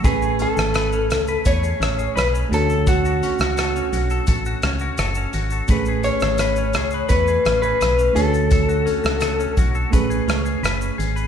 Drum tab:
HH |x-x-x-x-x-x-x-x-|x-x-x-x-x-x-x-x-|x-x-x-x-x-x-x-x-|x-x-x-x-x-x-x-x-|
SH |xxxxxxxxxxxxxxxx|xxxxxxxxxxxxxxxx|xxxxxxxxxxxxxxxx|xxxxxxxxxxxxxxxx|
SD |---rr-r---r-r---|---rr-----r-r---|---rr-r---r-r---|---rr-----r-r---|
BD |o-------o-------|o-------o-------|o-------o-------|o-----o-o-------|